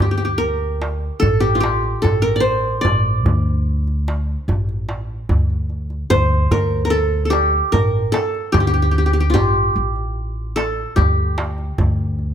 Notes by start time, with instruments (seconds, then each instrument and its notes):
0.00 upright bass D2, qanun G4, darbuka dum
0.11 qanun G4
0.18 qanun G4
0.25 qanun G4
0.38 qanun A#4
0.82 darbuka tek
1.20 upright bass A1, qanun A4, darbuka dum
1.40 qanun G4, darbuka ka
1.55 qanun F4
1.60 qanun G4, darbuka tek
1.84 darbuka ka
2.02 upright bass A1, qanun A4, darbuka dum
2.22 qanun A#4
2.36 qanun D5
2.40 qanun C5
2.81 upright bass A1, qanun D5, darbuka dum
3.25 upright bass D2, darbuka dum
3.87 darbuka ka
4.08 darbuka tek
4.48 upright bass A1, darbuka dum
4.69 darbuka ka
4.89 darbuka tek
5.29 upright bass D2, darbuka dum
5.50 darbuka ka
5.70 darbuka ka
5.90 darbuka ka
6.10 upright bass D2, qanun C5, darbuka dum
6.51 upright bass D2, qanun A#4, darbuka dum
6.85 qanun A#4
6.90 qanun A4
7.25 qanun A4
7.30 qanun G4, darbuka tek
7.72 upright bass A1, qanun A#4, darbuka dum
8.12 qanun A4, darbuka tek
8.34 darbuka ka
8.52 upright bass D2, qanun G4, darbuka dum
8.60 qanun G4
8.67 qanun G4
8.74 qanun G4, darbuka ka
8.82 qanun G4
8.91 qanun G4, darbuka ka
8.98 qanun G4
9.06 qanun G4
9.13 qanun G4
9.20 qanun G4
9.30 qanun F4 G4
9.35 upright bass A1, darbuka dum
9.76 upright bass A1
9.96 darbuka ka
10.56 qanun A4, darbuka tek
10.96 upright bass D2, qanun G4, darbuka dum
11.38 darbuka tek
11.58 darbuka ka
11.78 upright bass D2, darbuka dum
11.99 darbuka ka
12.19 darbuka ka